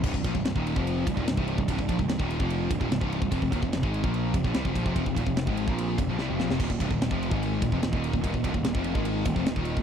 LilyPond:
<<
  \new Staff \with { instrumentName = "Analog synth pad" } { \time 4/4 \key c \minor \tempo 4 = 146 <c g d' ees'>1~ | <c g d' ees'>1 | <f c' g' f''>1~ | <f c' g' f''>1 |
<ees bes f' ees''>1~ | <ees bes f' ees''>1 | }
  \new Staff \with { instrumentName = "Distorted electric guitar" } { \clef bass \time 4/4 \key c \minor <c, g,>16 <c, g,>16 <bes, f>16 <c, g,>16 <c, g,>16 <ees, bes, ees>8 <f, c f>8. <c, g,>16 <ees, bes,>16 <c, g,>16 <c, g, c>8 <c, g,>16 | <c, g,>16 <c, g,>16 <bes, f>16 <c, g,>16 <c, g,>16 <ees, bes, ees>8 <f, c f>8. <c, g,>16 <ees, bes,>16 <c, g,>16 <c, g, c>8 <c, g,>16 | <f, c>16 <f, c>16 <ees, bes,>16 <f, c>16 <f, c>16 <aes, ees aes>8 <bes, f bes>8. <f, c>16 <bes, f>16 <c g>16 <f, c>16 <bes, f>16 <f, c>16 | <f, c>16 <f, c>16 <ees, bes,>16 <f, c>16 <f, c>16 <aes, ees aes>8 <bes, f bes>8. <f, c>16 <bes, f>16 <c g>16 <f, c>16 <bes, f>16 <f, c>16 |
<ees, bes,>16 <ees, bes,>16 <c, g,>16 <ees, bes,>16 <ees, bes,>16 <f, c f>8 <aes, ees aes>8. <ees, bes,>16 <f, c>16 <ees, bes,>16 <ees, bes, ees>8 <ees, bes,>16 | <ees, bes,>16 <ees, bes,>16 <c, g,>16 <ees, bes,>16 <ees, bes,>16 <f, c f>8 <aes, ees aes>8. <ees, bes,>16 <f, c>16 <ees, bes,>16 <ees, bes, ees>8 <ees, bes,>16 | }
  \new Staff \with { instrumentName = "Distorted electric guitar" } { \clef bass \time 4/4 \key c \minor <c, g,>16 <c, g,>16 <bes, f>16 <c, g,>16 <c, g,>16 <ees, bes, ees>8 <f, c f>8. <c, g,>16 <ees, bes,>16 <c, g,>16 <c, g, c>8 <c, g,>16 | <c, g,>16 <c, g,>16 <bes, f>16 <c, g,>16 <c, g,>16 <ees, bes, ees>8 <f, c f>8. <c, g,>16 <ees, bes,>16 <c, g,>16 <c, g, c>8 <c, g,>16 | <f, c>16 <f, c>16 <ees, bes,>16 <f, c>16 <f, c>16 <aes, ees aes>8 <bes, f bes>8. <f, c>16 <bes, f>16 <c g>16 <f, c>16 <bes, f>16 <f, c>16 | <f, c>16 <f, c>16 <ees, bes,>16 <f, c>16 <f, c>16 <aes, ees aes>8 <bes, f bes>8. <f, c>16 <bes, f>16 <c g>16 <f, c>16 <bes, f>16 <f, c>16 |
<ees, bes,>16 <ees, bes,>16 <c, g,>16 <ees, bes,>16 <ees, bes,>16 <f, c f>8 <aes, ees aes>8. <ees, bes,>16 <f, c>16 <ees, bes,>16 <ees, bes, ees>8 <ees, bes,>16 | <ees, bes,>16 <ees, bes,>16 <c, g,>16 <ees, bes,>16 <ees, bes,>16 <f, c f>8 <aes, ees aes>8. <ees, bes,>16 <f, c>16 <ees, bes,>16 <ees, bes, ees>8 <ees, bes,>16 | }
  \new Staff \with { instrumentName = "Overdriven electric guitar" } { \clef bass \time 4/4 \key c \minor <c, g,>16 <c, g,>16 <bes, f>16 <c, g,>16 <c, g,>16 <ees, bes, ees>8 <f, c f>8. <c, g,>16 <ees, bes,>16 <c, g,>16 <c, g, c>8 <c, g,>16 | <c, g,>16 <c, g,>16 <bes, f>16 <c, g,>16 <c, g,>16 <ees, bes, ees>8 <f, c f>8. <c, g,>16 <ees, bes,>16 <c, g,>16 <c, g, c>8 <c, g,>16 | <f, c>16 <f, c>16 <ees, bes,>16 <f, c>16 <f, c>16 <aes, ees aes>8 <bes, f bes>8. <f, c>16 <bes, f>16 <c g>16 <f, c>16 <bes, f>16 <f, c>16 | <f, c>16 <f, c>16 <ees, bes,>16 <f, c>16 <f, c>16 <aes, ees aes>8 <bes, f bes>8. <f, c>16 <bes, f>16 <c g>16 <f, c>16 <bes, f>16 <f, c>16 |
<ees, bes,>16 <ees, bes,>16 <c, g,>16 <ees, bes,>16 <ees, bes,>16 <f, c f>8 <aes, ees aes>8. <ees, bes,>16 <f, c>16 <ees, bes,>16 <ees, bes, ees>8 <ees, bes,>16 | <ees, bes,>16 <ees, bes,>16 <c, g,>16 <ees, bes,>16 <ees, bes,>16 <f, c f>8 <aes, ees aes>8. <ees, bes,>16 <f, c>16 <ees, bes,>16 <ees, bes, ees>8 <ees, bes,>16 | }
  \new Staff \with { instrumentName = "Picked electric bass" } { \clef bass \time 4/4 \key c \minor c,,16 c,,16 bes,,16 c,,16 c,,16 ees,,8 f,,8. c,,16 ees,,16 c,,16 c,,8 c,,16 | c,,16 c,,16 bes,,16 c,,16 c,,16 ees,,8 f,,8. c,,16 ees,,16 c,,16 c,,8 c,,16 | f,,16 f,,16 ees,,16 f,,16 f,,16 aes,,8 bes,,8. f,,16 bes,,16 c,16 f,,16 bes,,16 f,,16 | f,,16 f,,16 ees,,16 f,,16 f,,16 aes,,8 bes,,8. f,,16 bes,,16 c,16 f,,16 bes,,16 f,,16 |
ees,,16 ees,,16 c,,16 ees,,16 ees,,16 f,,8 aes,,8. ees,,16 f,,16 ees,,16 ees,,8 ees,,16 | ees,,16 ees,,16 c,,16 ees,,16 ees,,16 f,,8 aes,,8. ees,,16 f,,16 ees,,16 ees,,8 ees,,16 | }
  \new DrumStaff \with { instrumentName = "Drums" } \drummode { \time 4/4 <cymc bd>16 bd16 <bd cymr>16 bd16 <cymr sn>16 bd16 cymr16 bd16 cymr8 <bd cymr>16 bd16 <cymr sn>16 bd16 cymr16 bd16 | <bd cymr>16 bd16 <bd cymr>16 bd16 <cymr sn>16 bd16 cymr16 bd16 cymr8 <bd cymr>16 bd16 <cymr sn>16 bd16 cymr16 bd16 | <bd cymr>16 bd16 <bd cymr>16 bd16 <cymr sn>16 bd16 cymr16 bd16 cymr8 <bd cymr>16 bd16 <cymr sn>16 bd16 <bd cymr>16 bd16 | <bd cymr>16 bd16 <bd cymr>16 bd16 <cymr sn>16 bd16 cymr16 bd16 cymr8 <bd cymr>8 sn8 sn16 sn16 |
<cymc bd>16 bd16 <bd cymr>16 bd16 <cymr sn>16 bd16 cymr16 bd16 cymr8 <bd cymr>16 bd16 <cymr sn>16 bd16 cymr16 bd16 | <bd cymr>16 bd16 <bd cymr>16 bd16 <cymr sn>16 bd16 cymr16 bd16 cymr8 <bd cymr>16 bd16 <cymr sn>16 bd16 cymr16 bd16 | }
>>